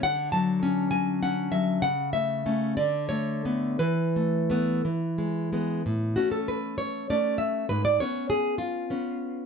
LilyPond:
\new Staff \with { instrumentName = "Nylon-string guitar" } { \time 6/8 \key a \major \tempo 4. = 64 << { fis''8 a''4 gis''8 fis''8 e''8 | fis''8 e''4 d''8 cis''4 | b'2~ b'8 r8 | r8 fis'16 a'16 b'8 cis''8 d''8 e''8 |
b'16 d''16 cis''8 gis'8 eis'4. | } \\ { d8 fis8 cis'8 fis8 cis'8 fis8 | cis8 a8 <a cis'>8 d8 a8 <a b>8 | e8 a8 <a b>8 e8 gis8 <gis b>8 | a,8 <a cis'>4. <a cis'>4 |
gis,8 <b cis'>4. <b cis'>4 | } >> }